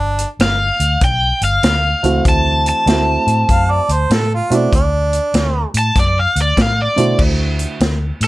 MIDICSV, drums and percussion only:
0, 0, Header, 1, 2, 480
1, 0, Start_track
1, 0, Tempo, 617284
1, 1754, Time_signature, 4, 2, 24, 8
1, 6435, End_track
2, 0, Start_track
2, 0, Title_t, "Drums"
2, 144, Note_on_c, 9, 42, 51
2, 221, Note_off_c, 9, 42, 0
2, 308, Note_on_c, 9, 42, 72
2, 317, Note_on_c, 9, 38, 98
2, 386, Note_off_c, 9, 42, 0
2, 394, Note_off_c, 9, 38, 0
2, 621, Note_on_c, 9, 42, 61
2, 699, Note_off_c, 9, 42, 0
2, 786, Note_on_c, 9, 42, 75
2, 789, Note_on_c, 9, 36, 103
2, 864, Note_off_c, 9, 42, 0
2, 867, Note_off_c, 9, 36, 0
2, 1100, Note_on_c, 9, 42, 53
2, 1178, Note_off_c, 9, 42, 0
2, 1267, Note_on_c, 9, 42, 77
2, 1276, Note_on_c, 9, 38, 107
2, 1345, Note_off_c, 9, 42, 0
2, 1354, Note_off_c, 9, 38, 0
2, 1584, Note_on_c, 9, 42, 50
2, 1662, Note_off_c, 9, 42, 0
2, 1749, Note_on_c, 9, 42, 73
2, 1751, Note_on_c, 9, 36, 109
2, 1827, Note_off_c, 9, 42, 0
2, 1829, Note_off_c, 9, 36, 0
2, 2068, Note_on_c, 9, 42, 51
2, 2145, Note_off_c, 9, 42, 0
2, 2234, Note_on_c, 9, 42, 71
2, 2242, Note_on_c, 9, 38, 99
2, 2311, Note_off_c, 9, 42, 0
2, 2320, Note_off_c, 9, 38, 0
2, 2547, Note_on_c, 9, 42, 49
2, 2624, Note_off_c, 9, 42, 0
2, 2712, Note_on_c, 9, 42, 72
2, 2713, Note_on_c, 9, 36, 86
2, 2790, Note_off_c, 9, 42, 0
2, 2791, Note_off_c, 9, 36, 0
2, 3026, Note_on_c, 9, 42, 52
2, 3104, Note_off_c, 9, 42, 0
2, 3192, Note_on_c, 9, 42, 76
2, 3201, Note_on_c, 9, 38, 96
2, 3270, Note_off_c, 9, 42, 0
2, 3279, Note_off_c, 9, 38, 0
2, 3510, Note_on_c, 9, 42, 50
2, 3587, Note_off_c, 9, 42, 0
2, 3675, Note_on_c, 9, 36, 91
2, 3676, Note_on_c, 9, 42, 72
2, 3752, Note_off_c, 9, 36, 0
2, 3754, Note_off_c, 9, 42, 0
2, 3988, Note_on_c, 9, 42, 54
2, 4066, Note_off_c, 9, 42, 0
2, 4151, Note_on_c, 9, 42, 77
2, 4160, Note_on_c, 9, 38, 89
2, 4229, Note_off_c, 9, 42, 0
2, 4238, Note_off_c, 9, 38, 0
2, 4464, Note_on_c, 9, 42, 61
2, 4542, Note_off_c, 9, 42, 0
2, 4631, Note_on_c, 9, 42, 72
2, 4632, Note_on_c, 9, 36, 96
2, 4640, Note_on_c, 9, 38, 27
2, 4709, Note_off_c, 9, 42, 0
2, 4710, Note_off_c, 9, 36, 0
2, 4718, Note_off_c, 9, 38, 0
2, 4946, Note_on_c, 9, 42, 54
2, 5024, Note_off_c, 9, 42, 0
2, 5110, Note_on_c, 9, 42, 76
2, 5111, Note_on_c, 9, 36, 75
2, 5118, Note_on_c, 9, 38, 102
2, 5187, Note_off_c, 9, 42, 0
2, 5188, Note_off_c, 9, 36, 0
2, 5196, Note_off_c, 9, 38, 0
2, 5423, Note_on_c, 9, 42, 56
2, 5501, Note_off_c, 9, 42, 0
2, 5590, Note_on_c, 9, 36, 94
2, 5590, Note_on_c, 9, 49, 96
2, 5667, Note_off_c, 9, 36, 0
2, 5667, Note_off_c, 9, 49, 0
2, 5901, Note_on_c, 9, 42, 48
2, 5979, Note_off_c, 9, 42, 0
2, 6068, Note_on_c, 9, 42, 64
2, 6077, Note_on_c, 9, 38, 102
2, 6146, Note_off_c, 9, 42, 0
2, 6155, Note_off_c, 9, 38, 0
2, 6383, Note_on_c, 9, 42, 52
2, 6435, Note_off_c, 9, 42, 0
2, 6435, End_track
0, 0, End_of_file